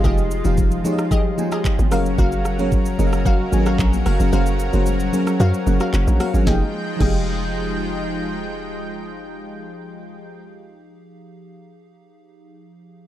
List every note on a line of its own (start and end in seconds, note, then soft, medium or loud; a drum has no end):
0.00 0.04 F3 medium
0.00 1.88 F3 medium
0.00 0.36 F3 medium
0.00 1.88 G#3 loud
0.00 0.04 D#4 medium
0.00 1.88 D#4 medium
0.00 1.88 F4 medium
0.00 0.05 G4 medium
0.00 0.54 G4 loud
0.00 0.05 G#4 medium
0.00 1.93 C5 loud
0.00 0.06 F5 loud
0.04 0.42 F1 loud
0.04 0.37 D#4 medium
0.04 0.37 G4 medium
0.04 0.54 G#4 medium
0.04 0.37 G#4 medium
0.04 0.54 D#5 loud
0.04 0.37 F5 medium
0.04 kick loud
0.04 low conga medium
0.04 shaker medium
0.18 shaker medium
0.31 shaker medium
0.44 0.82 F1 loud
0.44 0.77 F3 medium
0.44 0.77 D#4 medium
0.44 0.77 G4 medium
0.44 0.77 G#4 medium
0.44 0.78 F5 loud
0.44 high conga medium
0.44 shaker soft
0.58 kick loud
0.58 low conga medium
0.58 shaker medium
0.71 shaker medium
0.84 1.28 F3 medium
0.84 1.28 D#4 medium
0.84 1.28 G4 medium
0.84 1.28 G#4 medium
0.84 0.92 C#5 medium
0.84 high conga medium
0.84 low conga medium
0.84 shaker medium
0.93 1.32 D#5 loud
0.99 cross-stick loud
0.99 shaker medium
1.11 1.20 G4 loud
1.11 1.20 G#4 medium
1.11 1.21 D#5 loud
1.11 kick loud
1.11 low conga medium
1.11 shaker medium
1.37 1.91 F3 medium
1.37 1.92 D#4 medium
1.37 1.91 G#4 medium
1.37 1.92 G5 medium
1.37 1.92 G#5 loud
1.37 high conga medium
1.37 shaker medium
1.52 1.60 G4 medium
1.52 1.61 G#4 medium
1.52 1.61 D#5 medium
1.52 cross-stick loud
1.52 shaker soft
1.65 kick loud
1.65 clap loud
1.65 shaker medium
1.79 1.93 G#1 loud
1.79 high conga medium
1.79 shaker medium
1.91 2.17 F#1 loud
1.91 2.45 F#3 medium
1.91 6.43 F#3 medium
1.91 2.45 C#4 medium
1.91 6.43 C#4 medium
1.91 2.01 F#4 medium
1.91 6.43 F#4 medium
1.91 2.45 G#4 medium
1.91 2.01 A#4 medium
1.91 6.43 A#4 medium
1.91 2.46 A#4 medium
1.91 2.01 F5 medium
1.91 2.46 F5 loud
1.91 cross-stick loud
1.91 open hi-hat medium
1.91 high conga medium
1.91 shaker medium
2.06 shaker medium
2.18 2.95 F#1 loud
2.18 2.68 F#4 loud
2.18 2.68 A#4 medium
2.18 2.68 F5 loud
2.18 kick loud
2.18 low conga medium
2.18 shaker medium
2.32 shaker medium
2.45 cross-stick medium
2.45 shaker medium
2.59 2.91 F#3 medium
2.59 2.91 C#4 medium
2.59 2.91 G#4 medium
2.59 2.92 A#4 medium
2.59 2.92 C#5 loud
2.59 high conga medium
2.59 shaker soft
2.72 kick loud
2.72 low conga medium
2.72 shaker medium
2.86 shaker medium
2.98 3.48 F#1 loud
2.98 3.42 F#3 medium
2.98 3.42 C#4 medium
2.98 3.42 G#4 medium
2.98 3.43 A#4 medium
2.98 3.06 D#5 medium
2.98 high conga medium
2.98 low conga medium
2.98 shaker medium
3.07 3.46 F5 loud
3.13 cross-stick loud
3.13 shaker medium
3.25 3.35 F#4 medium
3.25 3.35 A#4 medium
3.25 3.35 F5 loud
3.25 kick loud
3.25 low conga medium
3.25 shaker medium
3.52 3.77 G#1 medium
3.52 4.06 F#3 medium
3.52 4.06 C#4 medium
3.52 4.06 G#4 medium
3.52 3.60 A4 medium
3.52 4.07 G#5 loud
3.52 high conga medium
3.52 shaker medium
3.60 4.10 A#4 medium
3.66 3.75 F#4 medium
3.66 3.75 A#4 medium
3.66 3.75 F5 medium
3.66 cross-stick loud
3.66 shaker soft
3.79 4.04 A#1 loud
3.79 kick loud
3.79 clap loud
3.79 shaker medium
3.93 high conga medium
3.93 shaker medium
4.06 4.19 F#1 medium
4.06 4.15 F#4 medium
4.06 4.15 A#4 medium
4.06 4.15 F5 medium
4.06 cross-stick medium
4.06 open hi-hat medium
4.06 high conga medium
4.06 shaker medium
4.19 4.32 F#1 medium
4.19 4.30 F#3 medium
4.19 4.30 C#4 medium
4.19 4.30 G#4 medium
4.19 4.31 A#4 medium
4.19 4.31 F5 loud
4.19 shaker medium
4.32 4.70 F#1 loud
4.32 4.65 F#3 medium
4.32 4.65 C#4 medium
4.32 4.82 F#4 loud
4.32 4.65 G#4 medium
4.32 4.82 A#4 medium
4.32 4.66 A#4 medium
4.32 4.66 C5 loud
4.32 4.82 F5 loud
4.32 low conga medium
4.32 shaker medium
4.46 shaker medium
4.60 shaker medium
4.73 5.10 F#1 loud
4.73 5.05 F#3 medium
4.73 5.05 C#4 medium
4.73 5.06 G#4 medium
4.73 5.06 A#4 medium
4.73 5.06 C5 loud
4.73 high conga medium
4.73 shaker soft
4.86 low conga medium
4.86 shaker medium
5.00 shaker medium
5.12 5.56 F#3 medium
5.12 5.56 C#4 medium
5.12 5.57 G#4 medium
5.12 5.57 A#4 medium
5.12 5.57 C#5 loud
5.12 high conga medium
5.12 low conga medium
5.12 shaker medium
5.27 cross-stick loud
5.27 shaker medium
5.40 5.53 F#2 loud
5.40 5.49 F#4 medium
5.40 5.49 A#4 medium
5.40 5.49 F5 loud
5.40 low conga medium
5.40 shaker medium
5.54 shaker medium
5.66 5.80 F#1 loud
5.66 6.20 F#3 medium
5.66 6.20 C#4 medium
5.66 6.20 G#4 medium
5.66 6.21 A#4 medium
5.66 6.21 F#5 loud
5.66 high conga medium
5.66 shaker medium
5.80 5.89 F#4 medium
5.80 5.89 A#4 medium
5.80 5.89 F5 medium
5.80 cross-stick loud
5.80 shaker soft
5.93 6.06 F#1 loud
5.93 clap loud
5.93 shaker medium
6.07 6.19 A#1 loud
6.07 high conga medium
6.07 shaker medium
6.20 6.29 F#4 medium
6.20 6.29 A#4 medium
6.20 6.30 F5 medium
6.20 cross-stick loud
6.20 open hi-hat medium
6.20 high conga medium
6.20 shaker medium
6.34 6.46 G#1 medium
6.34 6.44 F#3 medium
6.34 6.44 C#4 medium
6.34 6.45 G#4 medium
6.34 6.45 A#4 medium
6.34 6.45 F5 medium
6.34 shaker medium
6.43 6.62 F1 loud
6.43 6.60 F3 medium
6.43 10.41 F3 medium
6.43 10.41 G#3 loud
6.43 6.61 D#4 medium
6.43 10.41 D#4 medium
6.43 6.62 G#4 medium
6.43 6.62 D#5 medium
6.43 10.41 G5 medium
6.43 kick loud
6.43 snare medium
6.43 high conga medium
6.47 6.63 G4 medium
6.47 6.64 G#4 medium
6.47 6.63 G5 loud
6.52 6.65 F5 medium
6.97 10.95 F1 loud
6.97 10.91 F3 medium
6.97 10.93 D#4 medium
6.97 10.94 G#4 medium
6.97 10.95 D#5 medium
6.97 kick loud
6.97 crash medium
6.97 high conga medium
7.01 10.95 G4 medium
7.01 10.97 G#4 medium
7.01 10.95 G5 loud
7.05 10.99 F5 medium